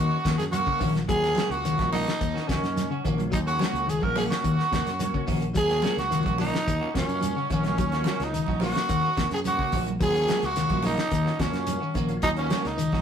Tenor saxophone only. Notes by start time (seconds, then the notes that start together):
Already playing: F#4
0.38 G#4
0.52 F#4
1.09 G#4
1.51 F#4
1.92 D#4
2.48 C#4
3.33 D#4
3.47 F#4
3.90 G#4
4.04 A#4
4.18 G#4
4.31 F#4
5.57 G#4
5.99 F#4
6.41 D#4
6.97 C#4
7.53 C#4
8.24 D#4
8.65 F#4
9.34 G#4
9.47 F#4
10.03 G#4
10.45 F#4
10.86 D#4
11.41 C#4
12.23 D#4
12.38 C#4
12.67 D#4